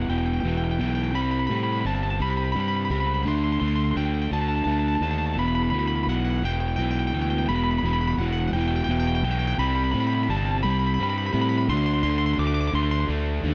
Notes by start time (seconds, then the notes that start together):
0.02 F#5
0.08 E1 E2 B2 E3 G5
0.18 G5
0.26 G5
0.33 G5
0.40 E1 E2 G5
0.45 B2 E3 G5
0.57 G5
0.64 G5
0.71 G5
0.78 B1 E2 B2 E3 G5
0.88 G5
0.95 G5
1.03 G5
1.11 C2 C3 G3 C4 G5
1.15 B5
1.22 B5
1.31 B5
1.39 B5
1.47 A2 C3 G3 B5
1.51 C4
1.55 B5
1.63 B5
1.72 B5
1.81 C3 B5
1.85 G1 G3 C4 A5
1.95 A5
2.03 A5
2.10 A5
2.20 C2 C3 G3 C4 B5
2.30 B5
2.37 B5
2.44 B5
2.52 G2 C3 G3 B5
2.56 C4 B5
2.68 B5
2.76 B5
2.85 B5
2.90 C#2 C3 G3 C4 B5
3.00 B5
3.07 B5
3.14 B5
3.23 D2 D3 A3 D4 B5
3.28 C6
3.35 C6
3.44 C6
3.52 C6
3.60 D2 D3 A3 D4 C6
3.68 C6
3.76 C6
3.84 C6
3.91 C6
3.96 D2 D3 A3 D4 G5
4.05 G5
4.14 G5
4.22 G5
4.31 D2 D3 A3 D4 A5
4.41 A5
4.48 A5
4.56 A5
4.64 D2 D3 A3 D4 A5
4.72 A5
4.79 A5
4.88 A5
4.95 A5
5.01 D#2 D3 A3 D4 A5
5.11 A5
5.18 A5
5.26 A5
5.33 E1 E2 B2 A5
5.38 E3 B5
5.48 B5
5.55 B5
5.63 B5
5.70 D2 E2 B2 E3 B5
5.79 B5
5.87 B5
5.95 B5
6.03 B1 B5
6.08 E2 B2 E3 F#5
6.16 F#5
6.25 F#5
6.30 F#5
6.38 F#5
6.42 E1 E2 B2 E3 G5
6.53 G5
6.60 G5
6.68 G5
6.76 B1 E2 B2 E3 G5
6.84 G5
6.91 G5
6.99 G5
7.07 G5
7.13 D2 E2 B2 E3 G5
7.21 G5
7.30 G5
7.38 G5
7.46 E1 E2 B2 G5 B5
7.50 E3
7.56 B5
7.64 B5
7.71 B5
7.78 B5
7.83 E1 E2 B2 E3 B5
7.93 B5
8.01 B5
8.07 B5
8.17 E1 E2 B2 E3 F#5
8.26 F#5
8.32 F#5
8.40 F#5
8.48 F#5
8.52 E1 E2 B2 E3 G5
8.61 G5
8.68 G5
8.76 G5
8.84 E1 G5
8.89 E2 B2 E3 G5
9.00 G5
9.07 G5
9.15 G5
9.22 B1 E2 B2 E3 G5
9.31 G5
9.39 G5
9.47 G5
9.54 G5
9.58 C2 C3 G3 C4 B5
9.68 B5
9.75 B5
9.84 B5
9.91 A2 C3 G3 C4 B5
10.00 B5
10.07 B5
10.15 B5
10.23 B5
10.29 G1 C3 G3 C4 A5
10.37 A5
10.45 A5
10.51 A5
10.58 A5
10.63 C2 C3 G3 C4 B5
10.70 B5
10.79 B5
10.86 B5
10.94 B5
10.99 G2 C3 G3 C4 B5
11.09 B5
11.18 B5
11.26 B5
11.33 A2 C3 G3 C4 B5
11.41 B5
11.49 B5
11.58 B5
11.68 D2 D3 A3 D4 C6
11.77 C6
11.86 C6
11.93 C6
12.03 D2 D3 A3 D4 C6
12.10 C6
12.18 C6
12.26 C6
12.33 C6
12.38 D2 D3 A3 D4 D6
12.47 D6
12.54 D6
12.61 D6
12.67 D6
12.73 D2 D3 A3 D4 C6
12.83 C6
12.91 C6
13.00 C6
13.08 D2 D3 A3 D4
13.43 D#2 D3 A3 D4